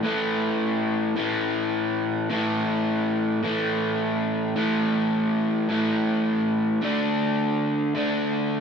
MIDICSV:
0, 0, Header, 1, 2, 480
1, 0, Start_track
1, 0, Tempo, 566038
1, 38, Time_signature, 4, 2, 24, 8
1, 7294, End_track
2, 0, Start_track
2, 0, Title_t, "Overdriven electric guitar"
2, 0, Program_c, 0, 29
2, 25, Note_on_c, 0, 45, 88
2, 37, Note_on_c, 0, 52, 95
2, 50, Note_on_c, 0, 57, 92
2, 985, Note_off_c, 0, 45, 0
2, 988, Note_on_c, 0, 45, 83
2, 995, Note_off_c, 0, 52, 0
2, 999, Note_on_c, 0, 52, 80
2, 1006, Note_off_c, 0, 57, 0
2, 1010, Note_on_c, 0, 57, 82
2, 1944, Note_off_c, 0, 45, 0
2, 1948, Note_on_c, 0, 45, 94
2, 1955, Note_off_c, 0, 52, 0
2, 1958, Note_on_c, 0, 52, 95
2, 1966, Note_off_c, 0, 57, 0
2, 1970, Note_on_c, 0, 57, 102
2, 2904, Note_off_c, 0, 45, 0
2, 2907, Note_on_c, 0, 45, 75
2, 2917, Note_off_c, 0, 52, 0
2, 2921, Note_on_c, 0, 52, 84
2, 2924, Note_off_c, 0, 57, 0
2, 2928, Note_on_c, 0, 57, 88
2, 3856, Note_off_c, 0, 45, 0
2, 3863, Note_off_c, 0, 52, 0
2, 3869, Note_on_c, 0, 45, 94
2, 3880, Note_on_c, 0, 52, 103
2, 3885, Note_off_c, 0, 57, 0
2, 3889, Note_on_c, 0, 57, 97
2, 4813, Note_off_c, 0, 45, 0
2, 4824, Note_off_c, 0, 52, 0
2, 4824, Note_on_c, 0, 45, 67
2, 4833, Note_on_c, 0, 52, 79
2, 4844, Note_off_c, 0, 57, 0
2, 4847, Note_on_c, 0, 57, 82
2, 5777, Note_off_c, 0, 45, 0
2, 5782, Note_off_c, 0, 52, 0
2, 5784, Note_on_c, 0, 50, 88
2, 5799, Note_off_c, 0, 57, 0
2, 5799, Note_on_c, 0, 57, 92
2, 5807, Note_on_c, 0, 62, 100
2, 6739, Note_off_c, 0, 50, 0
2, 6742, Note_on_c, 0, 50, 73
2, 6751, Note_off_c, 0, 57, 0
2, 6754, Note_on_c, 0, 57, 77
2, 6762, Note_off_c, 0, 62, 0
2, 6765, Note_on_c, 0, 62, 90
2, 7294, Note_off_c, 0, 50, 0
2, 7294, Note_off_c, 0, 57, 0
2, 7294, Note_off_c, 0, 62, 0
2, 7294, End_track
0, 0, End_of_file